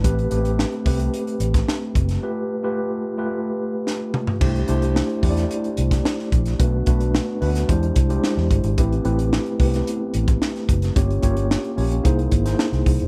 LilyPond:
<<
  \new Staff \with { instrumentName = "Tine electric piano" } { \time 4/4 \key c \major \tempo 4 = 110 <a c' g' b'>16 r16 <a c' g' b'>8. r16 <a c' g' b'>4. r4 | <a f' g' b'>8 r16 <a f' g' b'>8. r16 <a f' g' b'>4. r8. | <a d' e' g' c''>16 r16 <a d' e' g' c''>8. r16 <a d' e' g' c'' d''>4. r4 | <a b d' fis' b'>16 r16 <a b d' fis' b'>8. r16 <a b d' fis' b'>8 <gis d' e' g' bis'>8 r16 <gis d' e' g' bis'>4 r16 |
<a c' e' g' b'>16 r16 <a c' e' g' b'>8. r16 <a b c' e' g' b'>4. r4 | <bes des' f' g' des''>16 r16 <bes des' f' g' des''>8. r16 <bes des' f' g' des''>8 <bes dis' e' gis' c''>8 r16 <bes dis' e' gis' c''>4 r16 | }
  \new Staff \with { instrumentName = "Fingered electric bass" } { \clef bass \time 4/4 \key c \major a,,8 a,,8. r16 c,8 r8 a,,8 r8 fis,,8 | r1 | c,8 c,8. r16 e,8 r8 c,8 r8 bes,,8 | b,,8 b,,8. r16 d,8 e,8 bis,,8 r16 e,16 g,,16 gis,,16 |
a,,8 a,,8. r16 c,8 r8 a,,8 r8 fis,,8 | g,,8 g,,8. r16 bes,,8 c,8 gis,,8 r16 c,16 c,16 e,,16 | }
  \new DrumStaff \with { instrumentName = "Drums" } \drummode { \time 4/4 <hh bd>16 hh16 hh16 hh16 sn16 hh16 <hho bd>16 hh16 hh16 hh16 hh16 <hh bd sn>16 sn8 <hh bd>16 <hh sn>16 | r4 r4 r4 sn8 toml16 tomfh16 | <cymc bd>16 hh16 hh16 hh16 sn16 hh16 <hho bd>16 <hh sn>16 hh16 hh16 hh16 <hh bd sn>16 sn16 sn16 <hh bd>16 <hh sn>16 | <hh bd>8 <hh bd>16 hh16 sn8 hho16 <hh sn>16 <hh bd>16 hh16 <hh bd>16 hh16 sn16 sn16 <hh bd>16 hh16 |
<hh bd>16 hh16 hh16 hh16 sn16 hh16 <hho bd>16 <hh sn>16 hh8 hh16 <hh bd>16 sn16 <hh sn>16 <hh bd>16 <hh sn>16 | <hh bd>16 hh16 <hh bd>16 hh16 sn16 hh16 hho16 hh16 <hh bd>16 hh16 <hh bd>16 <hh sn>16 sn16 <hh sn>16 <hho bd>16 hh16 | }
>>